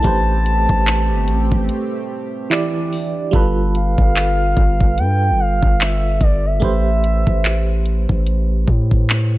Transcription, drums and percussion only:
0.04 kick loud
0.04 closed hi-hat medium
0.46 closed hi-hat medium
0.69 kick medium
0.87 clap loud
0.87 closed hi-hat medium
1.28 closed hi-hat medium
1.52 kick loud
1.69 closed hi-hat medium
2.51 clap loud
2.51 closed hi-hat medium
2.93 open hi-hat medium
3.33 kick loud
3.33 closed hi-hat medium
3.75 closed hi-hat medium
3.98 kick medium
4.16 clap loud
4.16 closed hi-hat medium
4.57 kick medium
4.57 closed hi-hat medium
4.80 kick medium
4.98 closed hi-hat medium
5.63 kick medium
5.80 clap loud
5.80 closed hi-hat medium
6.21 kick medium
6.21 closed hi-hat medium
6.62 kick loud
6.62 closed hi-hat medium
7.04 closed hi-hat medium
7.27 kick loud
7.44 clap loud
7.44 closed hi-hat medium
7.86 closed hi-hat medium
8.09 kick loud
8.27 closed hi-hat medium
8.68 kick loud
8.91 kick loud
9.09 clap loud
9.09 closed hi-hat medium

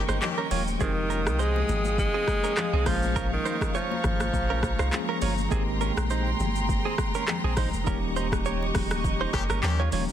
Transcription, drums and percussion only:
0.09 cross-stick loud
0.09 shaker medium
0.22 clap medium
0.22 low conga medium
0.22 shaker medium
0.51 open hi-hat medium
0.51 high conga medium
0.51 low conga medium
0.51 shaker medium
0.67 shaker medium
0.81 kick loud
0.81 shaker medium
1.10 high conga medium
1.10 shaker medium
1.26 cross-stick loud
1.26 high conga medium
1.26 shaker medium
1.39 shaker medium
1.56 high conga medium
1.69 high conga medium
1.69 low conga medium
1.69 shaker medium
1.85 high conga medium
1.85 shaker medium
1.98 kick loud
1.98 shaker medium
2.28 kick loud
2.28 cross-stick loud
2.28 high conga medium
2.28 shaker medium
2.44 shaker medium
2.57 cross-stick loud
2.57 clap medium
2.57 low conga medium
2.57 shaker medium
2.86 kick loud
2.86 cross-stick loud
2.86 open hi-hat medium
2.86 high conga medium
2.86 low conga medium
2.86 shaker medium
3.03 shaker medium
3.16 kick loud
3.16 shaker medium
3.46 high conga medium
3.46 shaker medium
3.61 kick loud
3.61 cross-stick loud
3.61 high conga medium
3.61 shaker medium
3.75 shaker medium
3.92 high conga medium
4.04 kick medium
4.04 cross-stick loud
4.04 high conga medium
4.04 low conga medium
4.04 shaker medium
4.20 cross-stick loud
4.20 high conga medium
4.20 shaker medium
4.34 kick loud
4.34 shaker medium
4.63 kick loud
4.63 cross-stick loud
4.63 high conga medium
4.63 shaker medium
4.79 cross-stick loud
4.79 shaker medium
4.92 clap loud
4.92 low conga medium
4.92 shaker medium
5.22 open hi-hat medium
5.22 high conga medium
5.22 low conga medium
5.22 shaker medium
5.38 shaker medium
5.51 kick loud
5.51 shaker medium
5.81 high conga medium
5.81 shaker medium
5.97 cross-stick loud
5.97 high conga medium
5.97 shaker medium
6.10 shaker medium
6.27 high conga medium
6.40 high conga medium
6.40 low conga medium
6.40 shaker medium
6.56 high conga medium
6.56 shaker medium
6.69 kick loud
6.69 shaker medium
6.98 kick loud
6.98 cross-stick loud
6.98 high conga medium
6.98 shaker medium
7.15 shaker medium
7.28 cross-stick medium
7.28 clap medium
7.28 low conga medium
7.28 shaker medium
7.57 kick loud
7.57 cross-stick medium
7.57 open hi-hat medium
7.57 high conga medium
7.57 low conga medium
7.57 shaker medium
7.73 shaker medium
7.87 kick loud
7.87 shaker medium
8.16 high conga medium
8.16 shaker medium
8.32 kick loud
8.32 cross-stick loud
8.32 high conga medium
8.32 shaker medium
8.45 shaker medium
8.62 high conga medium
8.75 kick medium
8.75 cross-stick loud
8.75 open hi-hat medium
8.75 high conga medium
8.75 low conga medium
8.75 shaker medium
8.91 cross-stick loud
8.91 high conga medium
8.91 shaker medium
9.04 kick medium
9.04 low conga medium
9.04 shaker medium
9.34 kick loud
9.34 cross-stick loud
9.34 high conga medium
9.34 shaker medium
9.50 cross-stick loud
9.50 shaker medium
9.63 clap loud
9.63 low conga medium
9.63 shaker medium
9.92 open hi-hat medium
9.92 high conga medium
9.92 low conga medium
9.92 shaker medium
10.09 shaker medium

